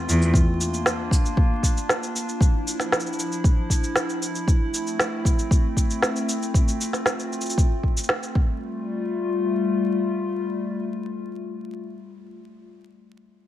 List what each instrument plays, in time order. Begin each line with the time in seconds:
Already playing: ambient pad A3 C4 F4
0.08 cello E2, cabasa
0.22 cabasa
0.34 ambient pad A#3 D4, kick, cabasa
0.61 cabasa
0.74 cabasa
0.86 snare, cabasa
1.11 kick, cabasa
1.25 cabasa
1.37 kick
1.63 kick, cabasa
1.77 cabasa
1.89 snare, cabasa
2.03 cabasa
2.16 cabasa
2.29 cabasa
2.41 ambient pad F3 E4, kick, cabasa
2.68 cabasa
2.80 snare, cabasa
2.92 snare, cabasa
3.00 cabasa
3.06 cabasa
3.13 cabasa
3.19 cabasa
3.32 cabasa
3.44 kick, cabasa
3.70 kick, cabasa
3.84 cabasa
3.96 snare, cabasa
4.10 cabasa
4.22 cabasa
4.35 cabasa
4.48 ambient pad A3 C4, kick, cabasa
4.74 cabasa
4.87 cabasa
4.99 snare, cabasa
5.25 kick, cabasa
5.39 cabasa
5.51 kick, cabasa
5.77 kick, cabasa
5.90 cabasa
6.03 snare, cabasa
6.16 cabasa
6.29 cabasa
6.42 cabasa
6.54 ambient pad F4, kick, cabasa
6.68 cabasa
6.81 cabasa
6.93 snare, cabasa
7.06 snare, cabasa
7.20 cabasa
7.33 cabasa
7.41 cabasa
7.46 cabasa
7.50 cabasa
7.58 kick, cabasa
7.84 kick
7.97 cabasa
8.04 cabasa
8.09 snare
8.23 cabasa
8.35 ambient pad G3 A3 F4, kick